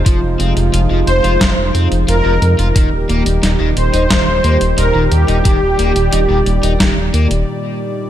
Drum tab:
HH |x-xxx-xxx-xxx-xx|x-xxx-xxx-xxx-xx|x-xxx-xxx-xx----|
SD |--------o-------|----o---o-------|--------o-------|
BD |o-------o-------|o-------o-------|o-------o-------|